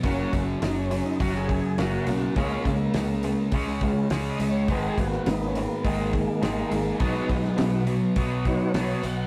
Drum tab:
HH |o-o-o-o-o-o-o-o-|o-o-o-o-o-o-o-o-|o-o-o-o-o-o-o-o-|o-o-o-o-o-o-o-o-|
SD |----o----o--o---|----o----o--o---|---oo-------o---|---oo-------o---|
BD |o-o-----o-o-----|o-o-----o-o-----|o-o-----o-o-----|o-o-----o-o-----|